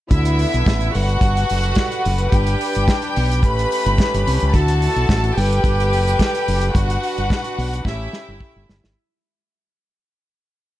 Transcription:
0.09 0.44 D2 medium
0.09 0.92 D3 medium
0.09 0.92 B3 medium
0.09 0.92 E4 medium
0.09 0.92 E5 medium
0.09 kick loud
0.09 closed hi-hat medium
0.25 closed hi-hat medium
0.39 open hi-hat medium
0.54 0.64 B1 medium
0.54 closed hi-hat soft
0.66 0.88 A1 loud
0.66 kick loud
0.66 snare loud
0.66 closed hi-hat medium
0.80 closed hi-hat soft
0.92 1.16 G1 loud
0.92 3.40 G3 medium
0.92 2.30 F#4 medium
0.92 2.30 A4 medium
0.92 3.40 B4 medium
0.92 2.29 F#5 medium
0.92 open hi-hat medium
1.09 closed hi-hat soft
1.21 1.43 G1 medium
1.21 kick loud
1.21 closed hi-hat medium
1.37 closed hi-hat soft
1.49 1.72 F#1 medium
1.49 open hi-hat medium
1.63 closed hi-hat soft
1.75 kick medium
1.75 snare loud
1.75 closed hi-hat medium
1.92 closed hi-hat soft
2.05 2.27 F#1 medium
2.05 open hi-hat medium
2.18 closed hi-hat soft
2.32 2.54 G1 loud
2.32 3.42 D4 medium
2.32 3.41 G4 medium
2.32 3.40 G5 medium
2.32 kick loud
2.32 closed hi-hat medium
2.47 closed hi-hat medium
2.61 open hi-hat medium
2.75 2.86 G1 medium
2.75 closed hi-hat soft
2.88 kick loud
2.88 snare loud
2.88 closed hi-hat medium
3.02 closed hi-hat soft
3.16 3.43 B1 medium
3.16 open hi-hat medium
3.32 closed hi-hat soft
3.43 3.65 A1 medium
3.43 4.53 A3 medium
3.43 4.53 C#4 medium
3.43 4.53 G4 medium
3.43 4.51 B4 medium
3.43 4.51 B5 loud
3.43 kick loud
3.43 closed hi-hat medium
3.59 closed hi-hat soft
3.72 open hi-hat medium
3.86 3.96 G1 medium
3.86 closed hi-hat soft
3.98 kick loud
3.98 snare loud
3.98 closed hi-hat medium
4.14 4.24 G1 medium
4.14 closed hi-hat soft
4.27 4.38 C2 medium
4.27 open hi-hat medium
4.40 4.52 C#2 medium
4.40 closed hi-hat soft
4.53 4.87 D2 loud
4.53 5.36 D3 medium
4.53 5.36 B3 medium
4.53 5.36 E4 medium
4.53 5.36 F#4 medium
4.53 5.34 A4 medium
4.53 5.34 A5 medium
4.53 kick loud
4.53 closed hi-hat medium
4.68 closed hi-hat medium
4.82 open hi-hat medium
4.96 5.06 B1 medium
4.96 closed hi-hat soft
5.09 5.31 A1 medium
5.09 kick loud
5.09 snare loud
5.09 closed hi-hat medium
5.24 closed hi-hat soft
5.36 5.58 G1 loud
5.36 7.83 G3 medium
5.36 6.71 G4 medium
5.36 6.73 G4 medium
5.36 6.73 A4 medium
5.36 6.73 B4 medium
5.36 6.72 G5 medium
5.36 open hi-hat medium
5.53 closed hi-hat soft
5.64 5.93 G1 medium
5.64 kick loud
5.64 closed hi-hat medium
5.80 closed hi-hat soft
5.93 6.14 F#1 medium
5.93 open hi-hat medium
6.08 closed hi-hat soft
6.19 kick medium
6.19 snare loud
6.19 closed hi-hat medium
6.35 closed hi-hat medium
6.48 6.69 F#1 medium
6.48 open hi-hat medium
6.61 closed hi-hat soft
6.73 6.96 G1 medium
6.73 7.85 D4 medium
6.73 7.82 F#4 medium
6.73 7.85 F#4 medium
6.73 7.84 B4 medium
6.73 7.82 F#5 loud
6.73 kick loud
6.73 closed hi-hat medium
6.90 closed hi-hat medium
7.03 open hi-hat medium
7.18 7.28 G1 medium
7.18 closed hi-hat soft
7.30 kick loud
7.30 snare loud
7.30 closed hi-hat medium
7.44 closed hi-hat soft
7.58 7.80 B1 medium
7.58 open hi-hat medium
7.74 closed hi-hat soft
7.85 8.07 A1 medium
7.85 8.95 A3 medium
7.85 8.95 C#4 medium
7.85 8.94 E4 medium
7.85 8.95 G4 medium
7.85 8.94 E5 medium
7.85 kick loud
7.85 snare medium
8.13 snare medium
8.28 8.38 G1 medium
8.40 kick medium
8.56 8.66 G1 medium
8.69 8.80 G1 medium
8.69 snare medium
8.84 8.94 G#1 medium
8.84 snare medium

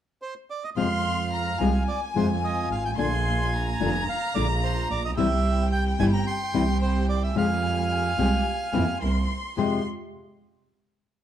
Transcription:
0.22 0.34 C5 medium
0.50 0.64 D5 soft
0.64 0.70 D#5 soft
0.76 1.56 F2 medium
0.76 0.85 C3 medium
0.76 0.86 F3 medium
0.76 0.86 G#3 medium
0.76 1.56 G#3 medium
0.76 0.86 C4 medium
0.76 1.56 C4 soft
0.76 1.56 F4 medium
0.76 0.86 F4 medium
0.76 1.84 F5 medium
0.76 1.28 C6 medium
1.33 1.58 A#5 medium
1.60 1.83 C2 medium
1.60 1.69 C3 medium
1.60 1.69 F3 medium
1.60 1.83 G#3 medium
1.60 1.69 G#3 medium
1.60 1.83 C4 soft
1.60 1.69 C4 medium
1.60 1.83 F4 medium
1.60 1.69 F4 medium
1.60 2.98 G#5 medium
1.88 2.01 D5 medium
2.15 2.70 F2 medium
2.15 2.24 C3 medium
2.15 2.24 F3 medium
2.15 2.94 G#3 medium
2.15 2.24 G#3 medium
2.15 2.94 C4 medium
2.15 2.25 C4 medium
2.15 2.94 F4 medium
2.15 2.25 F4 medium
2.15 2.29 C5 medium
2.44 2.69 D#5 medium
2.71 2.98 G#1 soft
2.71 2.84 F5 medium
2.85 2.91 G5 medium
2.97 3.76 A#1 medium
2.97 3.06 D3 medium
2.97 3.76 A#3 medium
2.97 3.07 A#3 medium
2.97 3.76 D4 medium
2.97 3.07 D4 medium
2.97 3.76 F4 medium
2.97 3.07 F4 medium
2.97 4.04 G#5 medium
2.97 3.53 C6 medium
3.53 5.17 A#5 medium
3.80 4.03 F1 medium
3.80 3.89 D3 medium
3.80 3.89 A#3 medium
3.80 4.03 A#3 medium
3.80 3.89 D4 medium
3.80 4.04 D4 medium
3.80 3.89 F4 medium
3.80 4.04 F4 medium
4.09 4.34 F5 medium
4.35 4.90 A#1 medium
4.35 4.44 D3 medium
4.35 5.13 A#3 medium
4.35 4.44 A#3 medium
4.35 5.13 D4 medium
4.35 4.44 D4 medium
4.35 5.13 F4 medium
4.35 4.44 F4 medium
4.35 4.47 D5 medium
4.64 4.88 C5 medium
4.91 5.18 A#1 medium
4.91 5.03 D5 medium
5.05 5.11 D#5 medium
5.17 5.95 C2 medium
5.17 5.26 C3 medium
5.17 5.26 E3 medium
5.17 5.26 G3 medium
5.17 5.95 C4 medium
5.17 5.27 C4 medium
5.17 5.95 E4 medium
5.17 5.27 E4 medium
5.17 5.95 G4 medium
5.17 5.68 E5 medium
5.17 7.32 G5 medium
5.72 5.84 G5 medium
5.99 6.22 G1 medium
5.99 6.08 C3 medium
5.99 6.08 E3 medium
5.99 6.08 G3 medium
5.99 6.22 C4 medium
5.99 6.08 C4 medium
5.99 6.22 E4 medium
5.99 6.08 E4 medium
5.99 6.22 G4 medium
5.99 6.06 G#5 medium
6.13 6.25 A#5 medium
6.27 6.77 C6 medium
6.53 7.32 C2 medium
6.53 6.63 C3 medium
6.53 6.63 E3 medium
6.53 6.63 G3 medium
6.53 7.31 C4 medium
6.53 6.63 C4 medium
6.53 7.31 E4 medium
6.53 6.63 E4 medium
6.53 7.31 G4 medium
6.82 7.07 C5 medium
7.09 7.23 D5 medium
7.23 7.35 E5 medium
7.35 8.14 F2 medium
7.35 7.44 C3 medium
7.35 7.44 F3 medium
7.35 8.14 G3 medium
7.35 8.13 G#3 medium
7.35 7.45 G#3 medium
7.35 7.45 C4 medium
7.35 8.14 F4 medium
7.35 7.45 G4 medium
7.35 8.98 F5 medium
7.35 9.01 G#5 medium
8.17 8.41 C2 medium
8.17 8.27 C3 medium
8.17 8.27 F3 medium
8.17 8.41 G#3 medium
8.17 8.27 G#3 medium
8.17 8.27 C4 medium
8.17 8.41 F4 medium
8.17 8.41 G4 medium
8.17 8.27 G4 medium
8.72 8.97 F2 medium
8.72 8.82 C3 medium
8.72 8.82 E3 medium
8.72 8.96 G#3 medium
8.72 8.82 A#3 medium
8.72 8.82 C4 medium
8.72 8.83 E4 medium
8.72 8.96 F4 medium
8.72 8.97 G4 medium
9.00 9.25 C2 medium
9.00 9.24 C4 medium
9.00 9.24 E4 soft
9.00 9.25 A#4 medium
9.00 9.56 C6 medium
9.57 9.79 F2 medium
9.57 9.81 F2 soft
9.57 9.79 C3 medium
9.57 9.79 F3 medium
9.57 9.80 G#3 soft
9.57 9.80 G#3 medium
9.57 9.80 C4 medium
9.57 9.80 F4 soft
9.57 9.80 G4 soft
9.57 9.80 G4 medium
9.57 9.83 C6 medium

